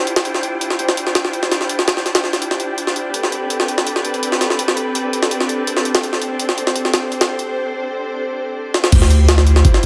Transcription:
Already playing: D4 E4 F4 G4 C5 G5
0.07 closed hi-hat
0.16 snare, closed hi-hat
0.25 closed hi-hat
0.34 snare
0.43 closed hi-hat
0.61 closed hi-hat
0.70 snare
0.79 closed hi-hat
0.89 snare
0.97 closed hi-hat
1.07 snare
1.15 snare, closed hi-hat
1.25 snare
1.33 closed hi-hat
1.43 snare
1.52 snare, closed hi-hat
1.61 snare
1.69 closed hi-hat
1.79 snare
1.88 snare, closed hi-hat
1.97 snare
2.06 snare, closed hi-hat
2.15 snare, closed hi-hat
2.24 snare
2.33 snare, closed hi-hat
2.42 closed hi-hat
2.51 snare
2.60 closed hi-hat
2.78 closed hi-hat
2.87 snare
2.96 closed hi-hat
3.13 C4 A4 B4, closed hi-hat
3.23 snare
3.32 closed hi-hat
3.50 closed hi-hat
3.60 snare
3.68 closed hi-hat
3.78 snare
3.87 closed hi-hat
3.96 snare
4.05 closed hi-hat
4.14 closed hi-hat
4.23 closed hi-hat
4.32 snare
4.41 snare, closed hi-hat
4.50 snare
4.59 closed hi-hat
4.68 snare
4.77 closed hi-hat
4.95 closed hi-hat
5.13 closed hi-hat
5.23 snare
5.31 closed hi-hat
5.40 snare
5.49 closed hi-hat
5.67 closed hi-hat
5.77 snare
5.85 closed hi-hat
5.95 snare, closed hi-hat
6.03 C5, closed hi-hat
6.13 snare
6.22 closed hi-hat
6.39 closed hi-hat
6.49 snare
6.58 closed hi-hat
6.67 snare
6.76 closed hi-hat
6.85 snare
6.94 snare, closed hi-hat
7.12 closed hi-hat
7.21 snare, closed hi-hat
7.39 closed hi-hat
8.74 snare
8.84 snare
8.92 D2 E4 F4 G4 C5, kick, closed hi-hat, crash, sub drop
9.02 snare
9.10 closed hi-hat
9.29 snare, closed hi-hat
9.38 snare
9.47 closed hi-hat
9.56 snare
9.65 kick, closed hi-hat
9.74 snare

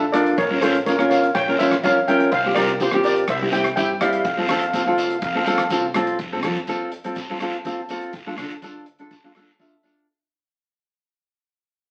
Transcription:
Already playing: B1 A4 E5
0.12 D4 F4 A4 A#4 D5, cross-stick, closed hi-hat
0.26 closed hi-hat
0.38 A#1 A#4 C#5, kick, closed hi-hat, long guiro
0.50 C#4 F4 A#4
0.61 A#1 C#4 F4 A4 A#4 C5, cross-stick, closed hi-hat
0.75 closed hi-hat
0.86 C#4 F4 A#4 C#5, kick, closed hi-hat, short guiro
0.98 G1 C#4 F4 A#4, cross-stick
1.10 C#5 F5, closed hi-hat, short guiro
1.23 closed hi-hat
1.35 A#1 C#5 G5, kick, cross-stick, closed hi-hat, long guiro
1.48 C#4 F4 A#4
1.59 A#1 C#4 F4 A#4 C5 E5, closed hi-hat, short guiro
1.71 cross-stick, closed hi-hat
1.83 F2 C#4 F4 A#4 C#5 F5, kick, closed hi-hat, short guiro
2.08 C#4 F4 A#4 E5 G5, closed hi-hat
2.20 closed hi-hat
2.32 C2 C5 F5, kick, closed hi-hat, long guiro
2.45 C4 F4 G4
2.55 C2 C4 F4 G4 A#4 D5, cross-stick, closed hi-hat
2.68 closed hi-hat
2.80 C4 F4 G4 C5, kick, closed hi-hat, short guiro
2.91 A1 C4 F4 G4, cross-stick
3.04 A#4 D5, closed hi-hat, short guiro
3.16 closed hi-hat
3.28 C2 C5 E5, kick, cross-stick, closed hi-hat, long guiro
3.41 C4 E4 G4
3.52 C2 C4 E4 G4 E5 G5, closed hi-hat, short guiro
3.64 cross-stick, closed hi-hat
3.76 G2 C4 E4 G4 E5 G5, kick, closed hi-hat, short guiro
4.01 C4 E4 G4 D5 F5, cross-stick, closed hi-hat
4.10 F5, closed hi-hat
4.17 F5
4.24 F2 F5, kick, closed hi-hat, long guiro
4.32 F5
4.38 C4 F4 A4 F5
4.48 F2 C4 F4 A4 F5, cross-stick, closed hi-hat
4.55 F5
4.61 F5, closed hi-hat
4.70 C4 F5, kick, closed hi-hat, short guiro
4.75 F4 A4 F5
4.86 D2 C4 F4 A4 F5
4.92 F5
4.98 F5, closed hi-hat, short guiro
5.06 F5, closed hi-hat
5.15 F5
5.22 F2 F5, kick, closed hi-hat, long guiro
5.31 F5
5.35 C4 F4 A4 F5
5.46 F2 C4 F4 A4 F5, closed hi-hat, short guiro
5.54 F5
5.58 cross-stick, closed hi-hat
5.70 C2 C4 F4 A4, kick, closed hi-hat, short guiro
5.94 C4 F4 A4, cross-stick, closed hi-hat
6.07 closed hi-hat
6.19 F2, kick, closed hi-hat, long guiro
6.32 C4 F4 A4
6.43 F3 C4 F4 A4, cross-stick, closed hi-hat
6.55 F2, closed hi-hat
6.67 C4 F4 A4, kick, closed hi-hat, short guiro
6.92 closed hi-hat
7.04 C4 F4 A4, closed hi-hat
7.15 kick, closed hi-hat, short guiro, long guiro
7.29 C4 F4 A4
7.40 C4 F4 A4, cross-stick, closed hi-hat
7.53 closed hi-hat
7.65 C4 F4 A4, kick, closed hi-hat, short guiro
7.89 C4 F4 A4, closed hi-hat, short guiro
8.01 closed hi-hat
8.13 D2, kick, closed hi-hat, long guiro
8.26 D4 F4 A4
8.38 D3 D4 F4 A4, cross-stick, closed hi-hat
8.50 D2, closed hi-hat
8.62 D4 F4 A4, kick, closed hi-hat, short guiro
8.86 closed hi-hat
8.99 D4 F4 A4, closed hi-hat
9.11 kick, closed hi-hat, short guiro, long guiro
9.24 D4 F4 A4
9.35 D4 F4 A4, cross-stick, closed hi-hat
9.47 closed hi-hat
9.59 D4 F4 A4 E5, kick, closed hi-hat, short guiro
9.83 D4 F4 A4, closed hi-hat, short guiro
9.96 closed hi-hat

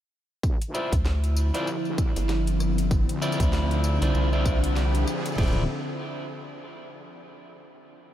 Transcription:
0.43 D2 D3 F3 C4 E4, kick, tambourine, riser
0.62 closed hi-hat, tambourine
0.74 E4 F4 C5 D5, tambourine
0.92 D2, kick, closed hi-hat, tambourine
1.05 snare, tambourine
1.24 closed hi-hat, tambourine
1.36 tambourine
1.54 C2 E4 F4 C5 D5, closed hi-hat, tambourine
1.67 tambourine
1.85 D2, tambourine
1.98 kick, tambourine
2.16 G1, closed hi-hat, tambourine
2.29 snare, tambourine
2.47 closed hi-hat, tambourine
2.60 cross-stick, tambourine
2.78 closed hi-hat, tambourine
2.91 D4, kick, tambourine
3.09 D2, closed hi-hat, tambourine
3.22 E4 F4 C5 D5, tambourine
3.32 tambourine
3.40 D2, kick, closed hi-hat, tambourine
3.42 tambourine
3.53 snare, tambourine
3.71 closed hi-hat, tambourine
3.84 tambourine
4.02 C2 E4 F4 C5 D5, closed hi-hat, tambourine
4.15 C2, tambourine
4.33 E4 F4 C5 D5, cross-stick, tambourine
4.46 kick, tambourine
4.64 closed hi-hat, tambourine
4.76 snare, tambourine
4.95 closed hi-hat, tambourine
5.07 A1, tambourine
5.26 closed hi-hat, tambourine
5.29 tambourine
5.32 tambourine
5.35 D1 F4, kick, crash, tambourine
5.39 E4 C5 D5, tambourine
5.43 tambourine
5.48 tambourine
5.52 tambourine

